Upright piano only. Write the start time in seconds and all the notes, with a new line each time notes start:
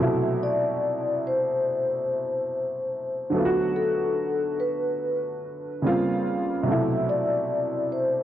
Already playing: C3 F#3
0.00 B2 A3 E4
3.30 D3 F#3
3.34 A3 B3
3.39 F4
3.45 F#4
5.82 C#3 G3 A#3 C4
5.87 F4
6.63 C3 F#3
6.68 B2 A3
6.72 E4